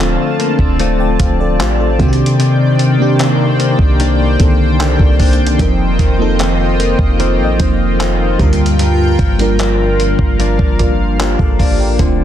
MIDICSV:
0, 0, Header, 1, 7, 480
1, 0, Start_track
1, 0, Tempo, 800000
1, 1436, Time_signature, 4, 2, 24, 8
1, 7345, End_track
2, 0, Start_track
2, 0, Title_t, "Analog synth pad"
2, 0, Program_c, 0, 89
2, 0, Note_on_c, 0, 65, 82
2, 0, Note_on_c, 0, 72, 81
2, 0, Note_on_c, 0, 74, 74
2, 0, Note_on_c, 0, 81, 91
2, 1178, Note_off_c, 0, 81, 0
2, 1179, Note_off_c, 0, 65, 0
2, 1194, Note_on_c, 0, 51, 93
2, 1194, Note_on_c, 0, 79, 102
2, 3332, Note_off_c, 0, 74, 0
2, 3334, Note_off_c, 0, 51, 0
2, 3354, Note_on_c, 0, 75, 79
2, 3356, Note_on_c, 0, 65, 84
2, 5011, Note_off_c, 0, 79, 0
2, 5012, Note_off_c, 0, 72, 0
2, 5019, Note_off_c, 0, 75, 0
2, 5038, Note_on_c, 0, 70, 82
2, 5038, Note_on_c, 0, 79, 104
2, 5988, Note_off_c, 0, 79, 0
2, 5998, Note_on_c, 0, 77, 93
2, 7176, Note_off_c, 0, 70, 0
2, 7185, Note_off_c, 0, 77, 0
2, 7200, Note_on_c, 0, 81, 91
2, 7201, Note_on_c, 0, 72, 75
2, 7345, Note_off_c, 0, 65, 0
2, 7345, Note_off_c, 0, 72, 0
2, 7345, Note_off_c, 0, 81, 0
2, 7345, End_track
3, 0, Start_track
3, 0, Title_t, "Synth pluck"
3, 0, Program_c, 1, 84
3, 2877, Note_on_c, 1, 79, 56
3, 3573, Note_off_c, 1, 79, 0
3, 4318, Note_on_c, 1, 72, 59
3, 4466, Note_on_c, 1, 75, 57
3, 5253, Note_off_c, 1, 72, 0
3, 5387, Note_off_c, 1, 75, 0
3, 6474, Note_on_c, 1, 74, 77
3, 7199, Note_on_c, 1, 69, 54
3, 7345, Note_off_c, 1, 69, 0
3, 7345, Note_off_c, 1, 74, 0
3, 7345, End_track
4, 0, Start_track
4, 0, Title_t, "FM electric piano"
4, 0, Program_c, 2, 5
4, 0, Control_c, 2, 64, 127
4, 0, Note_on_c, 2, 53, 88
4, 0, Note_on_c, 2, 57, 85
4, 0, Note_on_c, 2, 60, 81
4, 0, Note_on_c, 2, 62, 82
4, 0, Note_on_c, 2, 69, 101
4, 481, Note_off_c, 2, 62, 0
4, 481, Note_on_c, 2, 81, 66
4, 483, Note_off_c, 2, 69, 0
4, 485, Note_on_c, 2, 74, 53
4, 593, Note_off_c, 2, 81, 0
4, 595, Note_off_c, 2, 74, 0
4, 600, Note_on_c, 2, 79, 71
4, 603, Note_on_c, 2, 74, 60
4, 631, Note_off_c, 2, 53, 0
4, 634, Note_off_c, 2, 57, 0
4, 637, Note_off_c, 2, 60, 0
4, 712, Note_off_c, 2, 79, 0
4, 714, Note_off_c, 2, 74, 0
4, 720, Note_on_c, 2, 77, 73
4, 724, Note_on_c, 2, 72, 59
4, 833, Note_off_c, 2, 77, 0
4, 834, Note_off_c, 2, 72, 0
4, 842, Note_on_c, 2, 74, 69
4, 845, Note_on_c, 2, 69, 63
4, 953, Note_off_c, 2, 74, 0
4, 955, Note_off_c, 2, 69, 0
4, 962, Note_on_c, 2, 72, 71
4, 964, Note_on_c, 2, 67, 58
4, 1073, Note_off_c, 2, 72, 0
4, 1075, Note_off_c, 2, 67, 0
4, 1080, Note_on_c, 2, 69, 62
4, 1084, Note_on_c, 2, 62, 51
4, 1190, Note_on_c, 2, 51, 92
4, 1195, Note_on_c, 2, 58, 82
4, 1199, Note_off_c, 2, 62, 0
4, 1200, Note_on_c, 2, 60, 84
4, 1205, Control_c, 2, 64, 0
4, 1206, Note_on_c, 2, 62, 84
4, 1211, Note_on_c, 2, 66, 78
4, 1243, Note_off_c, 2, 66, 0
4, 1250, Note_on_c, 2, 67, 99
4, 1305, Control_c, 2, 64, 127
4, 1306, Note_off_c, 2, 69, 0
4, 1735, Note_off_c, 2, 51, 0
4, 1737, Note_off_c, 2, 58, 0
4, 1740, Note_off_c, 2, 60, 0
4, 1743, Note_off_c, 2, 62, 0
4, 1765, Note_off_c, 2, 67, 0
4, 1790, Note_on_c, 2, 51, 94
4, 1795, Note_on_c, 2, 58, 83
4, 1801, Note_on_c, 2, 60, 81
4, 1806, Note_on_c, 2, 62, 83
4, 1811, Note_on_c, 2, 67, 103
4, 2552, Note_off_c, 2, 51, 0
4, 2554, Note_off_c, 2, 58, 0
4, 2557, Note_off_c, 2, 60, 0
4, 2560, Note_off_c, 2, 62, 0
4, 2562, Note_off_c, 2, 67, 0
4, 2630, Note_on_c, 2, 50, 72
4, 2635, Note_on_c, 2, 58, 77
4, 2639, Note_on_c, 2, 60, 78
4, 2645, Note_on_c, 2, 62, 78
4, 2650, Note_on_c, 2, 69, 92
4, 2668, Note_on_c, 2, 51, 86
4, 2672, Note_off_c, 2, 50, 0
4, 3286, Note_off_c, 2, 58, 0
4, 3288, Note_off_c, 2, 60, 0
4, 3291, Note_off_c, 2, 62, 0
4, 3293, Note_off_c, 2, 69, 0
4, 3302, Note_off_c, 2, 51, 0
4, 3349, Note_on_c, 2, 53, 84
4, 3354, Note_on_c, 2, 58, 76
4, 3360, Note_on_c, 2, 60, 80
4, 3363, Control_c, 2, 64, 0
4, 3365, Note_on_c, 2, 63, 81
4, 3370, Note_on_c, 2, 70, 93
4, 3485, Control_c, 2, 64, 127
4, 3678, Note_off_c, 2, 53, 0
4, 3680, Note_off_c, 2, 58, 0
4, 3683, Note_off_c, 2, 60, 0
4, 3686, Note_off_c, 2, 63, 0
4, 3688, Note_off_c, 2, 70, 0
4, 3710, Note_on_c, 2, 53, 91
4, 3714, Note_on_c, 2, 58, 81
4, 3720, Note_on_c, 2, 60, 84
4, 3725, Note_on_c, 2, 63, 86
4, 3730, Note_on_c, 2, 69, 102
4, 4471, Note_off_c, 2, 53, 0
4, 4474, Note_off_c, 2, 58, 0
4, 4476, Note_off_c, 2, 60, 0
4, 4479, Note_off_c, 2, 63, 0
4, 4482, Note_off_c, 2, 69, 0
4, 4550, Note_on_c, 2, 53, 87
4, 4555, Note_on_c, 2, 58, 81
4, 4561, Note_on_c, 2, 60, 77
4, 4566, Note_on_c, 2, 63, 80
4, 4571, Note_on_c, 2, 72, 99
4, 5026, Note_off_c, 2, 58, 0
4, 5028, Note_on_c, 2, 55, 91
4, 5033, Note_off_c, 2, 53, 0
4, 5033, Note_on_c, 2, 58, 82
4, 5038, Note_on_c, 2, 50, 87
4, 5039, Note_off_c, 2, 60, 0
4, 5041, Note_off_c, 2, 63, 0
4, 5044, Note_off_c, 2, 72, 0
4, 5044, Note_on_c, 2, 65, 81
4, 5045, Control_c, 2, 64, 0
4, 5049, Note_on_c, 2, 70, 97
4, 5163, Control_c, 2, 64, 127
4, 5574, Note_off_c, 2, 55, 0
4, 5576, Note_off_c, 2, 58, 0
4, 5579, Note_off_c, 2, 50, 0
4, 5582, Note_off_c, 2, 65, 0
4, 5584, Note_off_c, 2, 70, 0
4, 5630, Note_on_c, 2, 55, 90
4, 5635, Note_on_c, 2, 58, 77
4, 5641, Note_on_c, 2, 62, 84
4, 5646, Note_on_c, 2, 65, 80
4, 5651, Note_on_c, 2, 70, 99
4, 6391, Note_off_c, 2, 55, 0
4, 6394, Note_off_c, 2, 58, 0
4, 6397, Note_off_c, 2, 62, 0
4, 6400, Note_off_c, 2, 65, 0
4, 6402, Note_off_c, 2, 70, 0
4, 6478, Note_on_c, 2, 70, 66
4, 6482, Note_on_c, 2, 65, 57
4, 6705, Note_off_c, 2, 70, 0
4, 6707, Note_off_c, 2, 65, 0
4, 6719, Note_on_c, 2, 72, 74
4, 6723, Note_on_c, 2, 67, 66
4, 6832, Note_off_c, 2, 72, 0
4, 6834, Note_off_c, 2, 67, 0
4, 6839, Note_on_c, 2, 74, 73
4, 6842, Note_on_c, 2, 69, 61
4, 6952, Note_off_c, 2, 74, 0
4, 6953, Note_off_c, 2, 69, 0
4, 6961, Note_on_c, 2, 77, 71
4, 6964, Note_on_c, 2, 72, 58
4, 7073, Note_off_c, 2, 77, 0
4, 7074, Note_off_c, 2, 72, 0
4, 7081, Note_on_c, 2, 79, 61
4, 7084, Note_on_c, 2, 74, 53
4, 7189, Note_on_c, 2, 57, 82
4, 7193, Note_on_c, 2, 60, 78
4, 7199, Note_on_c, 2, 62, 77
4, 7204, Note_on_c, 2, 65, 79
4, 7205, Control_c, 2, 64, 0
4, 7209, Note_on_c, 2, 72, 91
4, 7294, Control_c, 2, 64, 127
4, 7307, Note_off_c, 2, 79, 0
4, 7308, Note_off_c, 2, 74, 0
4, 7345, Note_off_c, 2, 57, 0
4, 7345, Note_off_c, 2, 60, 0
4, 7345, Note_off_c, 2, 62, 0
4, 7345, Note_off_c, 2, 65, 0
4, 7345, Note_off_c, 2, 72, 0
4, 7345, End_track
5, 0, Start_track
5, 0, Title_t, "Clean electric guitar"
5, 0, Program_c, 3, 27
5, 0, Note_on_c, 3, 50, 80
5, 0, Note_on_c, 3, 57, 62
5, 2, Note_on_c, 3, 60, 63
5, 5, Note_on_c, 3, 65, 67
5, 235, Note_off_c, 3, 60, 0
5, 237, Note_on_c, 3, 58, 64
5, 358, Note_off_c, 3, 58, 0
5, 358, Note_on_c, 3, 60, 52
5, 471, Note_off_c, 3, 57, 0
5, 475, Note_off_c, 3, 60, 0
5, 477, Note_off_c, 3, 65, 0
5, 478, Note_on_c, 3, 57, 66
5, 481, Note_on_c, 3, 60, 68
5, 487, Note_on_c, 3, 65, 62
5, 950, Note_off_c, 3, 57, 0
5, 957, Note_off_c, 3, 65, 0
5, 957, Note_on_c, 3, 57, 63
5, 959, Note_off_c, 3, 60, 0
5, 961, Note_on_c, 3, 60, 61
5, 964, Note_on_c, 3, 65, 69
5, 1195, Note_off_c, 3, 50, 0
5, 1197, Note_on_c, 3, 48, 87
5, 1245, Note_off_c, 3, 57, 0
5, 1248, Note_off_c, 3, 65, 0
5, 1430, Note_off_c, 3, 48, 0
5, 1437, Note_on_c, 3, 48, 86
5, 1675, Note_on_c, 3, 51, 62
5, 1914, Note_off_c, 3, 51, 0
5, 1916, Note_on_c, 3, 51, 64
5, 1917, Note_off_c, 3, 60, 0
5, 1919, Note_on_c, 3, 58, 63
5, 1923, Note_on_c, 3, 62, 67
5, 2155, Note_off_c, 3, 58, 0
5, 2157, Note_on_c, 3, 58, 66
5, 2396, Note_off_c, 3, 51, 0
5, 2398, Note_off_c, 3, 62, 0
5, 2398, Note_on_c, 3, 51, 71
5, 2400, Note_off_c, 3, 58, 0
5, 2403, Note_on_c, 3, 58, 68
5, 2405, Note_on_c, 3, 62, 76
5, 2875, Note_off_c, 3, 51, 0
5, 2877, Note_off_c, 3, 62, 0
5, 2877, Note_on_c, 3, 51, 63
5, 2878, Note_off_c, 3, 58, 0
5, 2881, Note_on_c, 3, 58, 63
5, 2884, Note_on_c, 3, 62, 72
5, 3110, Note_off_c, 3, 62, 0
5, 3117, Note_on_c, 3, 62, 72
5, 3357, Note_off_c, 3, 48, 0
5, 3357, Note_on_c, 3, 41, 89
5, 3405, Note_off_c, 3, 62, 0
5, 3596, Note_off_c, 3, 51, 0
5, 3598, Note_on_c, 3, 51, 64
5, 3831, Note_off_c, 3, 51, 0
5, 3838, Note_on_c, 3, 51, 63
5, 3839, Note_off_c, 3, 58, 0
5, 3841, Note_on_c, 3, 58, 61
5, 3845, Note_on_c, 3, 60, 64
5, 4075, Note_off_c, 3, 58, 0
5, 4077, Note_on_c, 3, 58, 67
5, 4308, Note_off_c, 3, 51, 0
5, 4315, Note_on_c, 3, 51, 66
5, 4316, Note_off_c, 3, 60, 0
5, 4317, Note_off_c, 3, 58, 0
5, 4320, Note_on_c, 3, 58, 67
5, 4323, Note_on_c, 3, 60, 73
5, 4789, Note_off_c, 3, 51, 0
5, 4796, Note_off_c, 3, 60, 0
5, 4796, Note_on_c, 3, 51, 63
5, 4797, Note_off_c, 3, 58, 0
5, 4799, Note_on_c, 3, 58, 67
5, 4803, Note_on_c, 3, 60, 74
5, 5034, Note_off_c, 3, 41, 0
5, 5036, Note_on_c, 3, 43, 88
5, 5084, Note_off_c, 3, 51, 0
5, 5088, Note_off_c, 3, 60, 0
5, 5268, Note_off_c, 3, 43, 0
5, 5275, Note_on_c, 3, 43, 85
5, 5517, Note_on_c, 3, 53, 65
5, 5754, Note_off_c, 3, 53, 0
5, 5757, Note_on_c, 3, 53, 63
5, 5758, Note_off_c, 3, 58, 0
5, 5760, Note_on_c, 3, 58, 65
5, 5764, Note_on_c, 3, 62, 67
5, 5990, Note_off_c, 3, 58, 0
5, 5997, Note_on_c, 3, 58, 64
5, 6233, Note_off_c, 3, 53, 0
5, 6233, Note_off_c, 3, 58, 0
5, 6236, Note_on_c, 3, 53, 66
5, 6240, Note_on_c, 3, 58, 67
5, 6241, Note_off_c, 3, 62, 0
5, 6244, Note_on_c, 3, 62, 73
5, 6712, Note_off_c, 3, 58, 0
5, 6714, Note_off_c, 3, 53, 0
5, 6716, Note_on_c, 3, 53, 68
5, 6720, Note_on_c, 3, 58, 64
5, 6721, Note_off_c, 3, 62, 0
5, 6723, Note_on_c, 3, 62, 70
5, 6953, Note_off_c, 3, 62, 0
5, 6955, Note_on_c, 3, 62, 75
5, 7196, Note_off_c, 3, 43, 0
5, 7197, Note_on_c, 3, 50, 82
5, 7246, Note_off_c, 3, 58, 0
5, 7345, Note_off_c, 3, 50, 0
5, 7345, Note_off_c, 3, 53, 0
5, 7345, Note_off_c, 3, 62, 0
5, 7345, End_track
6, 0, Start_track
6, 0, Title_t, "808-style bass"
6, 0, Program_c, 4, 38
6, 0, Note_on_c, 4, 26, 102
6, 101, Note_off_c, 4, 26, 0
6, 353, Note_on_c, 4, 26, 101
6, 700, Note_off_c, 4, 26, 0
6, 718, Note_on_c, 4, 26, 107
6, 955, Note_on_c, 4, 33, 105
6, 964, Note_off_c, 4, 26, 0
6, 1184, Note_off_c, 4, 33, 0
6, 1197, Note_on_c, 4, 48, 106
6, 2253, Note_off_c, 4, 48, 0
6, 2273, Note_on_c, 4, 36, 100
6, 2620, Note_off_c, 4, 36, 0
6, 2638, Note_on_c, 4, 36, 106
6, 2983, Note_off_c, 4, 36, 0
6, 2996, Note_on_c, 4, 36, 97
6, 3342, Note_off_c, 4, 36, 0
6, 3356, Note_on_c, 4, 29, 117
6, 3586, Note_off_c, 4, 29, 0
6, 3594, Note_on_c, 4, 29, 104
6, 4171, Note_off_c, 4, 29, 0
6, 4193, Note_on_c, 4, 29, 109
6, 4437, Note_on_c, 4, 33, 92
6, 4446, Note_off_c, 4, 29, 0
6, 4551, Note_off_c, 4, 33, 0
6, 4559, Note_on_c, 4, 29, 107
6, 5018, Note_off_c, 4, 29, 0
6, 5036, Note_on_c, 4, 38, 104
6, 5497, Note_off_c, 4, 38, 0
6, 5514, Note_on_c, 4, 31, 105
6, 6091, Note_off_c, 4, 31, 0
6, 6113, Note_on_c, 4, 31, 99
6, 6345, Note_off_c, 4, 31, 0
6, 6355, Note_on_c, 4, 31, 98
6, 6816, Note_off_c, 4, 31, 0
6, 6836, Note_on_c, 4, 31, 108
6, 7076, Note_on_c, 4, 33, 105
6, 7085, Note_off_c, 4, 31, 0
6, 7190, Note_off_c, 4, 33, 0
6, 7196, Note_on_c, 4, 26, 123
6, 7345, Note_off_c, 4, 26, 0
6, 7345, End_track
7, 0, Start_track
7, 0, Title_t, "Drums"
7, 1, Note_on_c, 9, 39, 109
7, 61, Note_off_c, 9, 39, 0
7, 238, Note_on_c, 9, 42, 55
7, 298, Note_off_c, 9, 42, 0
7, 353, Note_on_c, 9, 36, 90
7, 413, Note_off_c, 9, 36, 0
7, 477, Note_on_c, 9, 42, 70
7, 537, Note_off_c, 9, 42, 0
7, 717, Note_on_c, 9, 42, 73
7, 718, Note_on_c, 9, 36, 87
7, 777, Note_off_c, 9, 42, 0
7, 778, Note_off_c, 9, 36, 0
7, 959, Note_on_c, 9, 42, 78
7, 963, Note_on_c, 9, 39, 108
7, 1019, Note_off_c, 9, 42, 0
7, 1023, Note_off_c, 9, 39, 0
7, 1197, Note_on_c, 9, 36, 100
7, 1198, Note_on_c, 9, 42, 40
7, 1257, Note_off_c, 9, 36, 0
7, 1258, Note_off_c, 9, 42, 0
7, 1277, Note_on_c, 9, 42, 58
7, 1337, Note_off_c, 9, 42, 0
7, 1357, Note_on_c, 9, 42, 74
7, 1417, Note_off_c, 9, 42, 0
7, 1438, Note_on_c, 9, 42, 78
7, 1498, Note_off_c, 9, 42, 0
7, 1676, Note_on_c, 9, 42, 65
7, 1736, Note_off_c, 9, 42, 0
7, 1916, Note_on_c, 9, 42, 67
7, 1923, Note_on_c, 9, 39, 109
7, 1976, Note_off_c, 9, 42, 0
7, 1983, Note_off_c, 9, 39, 0
7, 2158, Note_on_c, 9, 42, 57
7, 2218, Note_off_c, 9, 42, 0
7, 2273, Note_on_c, 9, 36, 91
7, 2333, Note_off_c, 9, 36, 0
7, 2399, Note_on_c, 9, 42, 72
7, 2459, Note_off_c, 9, 42, 0
7, 2638, Note_on_c, 9, 42, 73
7, 2639, Note_on_c, 9, 36, 88
7, 2698, Note_off_c, 9, 42, 0
7, 2699, Note_off_c, 9, 36, 0
7, 2880, Note_on_c, 9, 42, 74
7, 2884, Note_on_c, 9, 39, 111
7, 2940, Note_off_c, 9, 42, 0
7, 2944, Note_off_c, 9, 39, 0
7, 2997, Note_on_c, 9, 36, 96
7, 3057, Note_off_c, 9, 36, 0
7, 3117, Note_on_c, 9, 36, 94
7, 3117, Note_on_c, 9, 42, 42
7, 3118, Note_on_c, 9, 46, 76
7, 3177, Note_off_c, 9, 36, 0
7, 3177, Note_off_c, 9, 42, 0
7, 3178, Note_off_c, 9, 46, 0
7, 3198, Note_on_c, 9, 42, 53
7, 3258, Note_off_c, 9, 42, 0
7, 3279, Note_on_c, 9, 42, 74
7, 3339, Note_off_c, 9, 42, 0
7, 3356, Note_on_c, 9, 36, 121
7, 3357, Note_on_c, 9, 42, 73
7, 3416, Note_off_c, 9, 36, 0
7, 3417, Note_off_c, 9, 42, 0
7, 3595, Note_on_c, 9, 36, 90
7, 3596, Note_on_c, 9, 42, 64
7, 3655, Note_off_c, 9, 36, 0
7, 3656, Note_off_c, 9, 42, 0
7, 3836, Note_on_c, 9, 42, 66
7, 3842, Note_on_c, 9, 39, 111
7, 3896, Note_off_c, 9, 42, 0
7, 3902, Note_off_c, 9, 39, 0
7, 4079, Note_on_c, 9, 42, 57
7, 4139, Note_off_c, 9, 42, 0
7, 4193, Note_on_c, 9, 36, 95
7, 4253, Note_off_c, 9, 36, 0
7, 4318, Note_on_c, 9, 42, 68
7, 4378, Note_off_c, 9, 42, 0
7, 4558, Note_on_c, 9, 42, 76
7, 4559, Note_on_c, 9, 36, 87
7, 4618, Note_off_c, 9, 42, 0
7, 4619, Note_off_c, 9, 36, 0
7, 4800, Note_on_c, 9, 42, 74
7, 4804, Note_on_c, 9, 39, 114
7, 4860, Note_off_c, 9, 42, 0
7, 4864, Note_off_c, 9, 39, 0
7, 5036, Note_on_c, 9, 36, 103
7, 5037, Note_on_c, 9, 42, 43
7, 5096, Note_off_c, 9, 36, 0
7, 5097, Note_off_c, 9, 42, 0
7, 5117, Note_on_c, 9, 42, 54
7, 5177, Note_off_c, 9, 42, 0
7, 5196, Note_on_c, 9, 42, 73
7, 5256, Note_off_c, 9, 42, 0
7, 5276, Note_on_c, 9, 42, 76
7, 5336, Note_off_c, 9, 42, 0
7, 5514, Note_on_c, 9, 36, 93
7, 5515, Note_on_c, 9, 42, 39
7, 5574, Note_off_c, 9, 36, 0
7, 5575, Note_off_c, 9, 42, 0
7, 5636, Note_on_c, 9, 42, 65
7, 5696, Note_off_c, 9, 42, 0
7, 5755, Note_on_c, 9, 42, 65
7, 5761, Note_on_c, 9, 39, 113
7, 5815, Note_off_c, 9, 42, 0
7, 5821, Note_off_c, 9, 39, 0
7, 5998, Note_on_c, 9, 42, 58
7, 6058, Note_off_c, 9, 42, 0
7, 6113, Note_on_c, 9, 36, 93
7, 6173, Note_off_c, 9, 36, 0
7, 6238, Note_on_c, 9, 42, 71
7, 6298, Note_off_c, 9, 42, 0
7, 6355, Note_on_c, 9, 36, 92
7, 6415, Note_off_c, 9, 36, 0
7, 6476, Note_on_c, 9, 42, 71
7, 6478, Note_on_c, 9, 36, 88
7, 6536, Note_off_c, 9, 42, 0
7, 6538, Note_off_c, 9, 36, 0
7, 6718, Note_on_c, 9, 42, 83
7, 6722, Note_on_c, 9, 39, 119
7, 6778, Note_off_c, 9, 42, 0
7, 6782, Note_off_c, 9, 39, 0
7, 6836, Note_on_c, 9, 36, 98
7, 6896, Note_off_c, 9, 36, 0
7, 6956, Note_on_c, 9, 36, 93
7, 6957, Note_on_c, 9, 46, 73
7, 7016, Note_off_c, 9, 36, 0
7, 7017, Note_off_c, 9, 46, 0
7, 7196, Note_on_c, 9, 36, 118
7, 7196, Note_on_c, 9, 42, 77
7, 7256, Note_off_c, 9, 36, 0
7, 7256, Note_off_c, 9, 42, 0
7, 7345, End_track
0, 0, End_of_file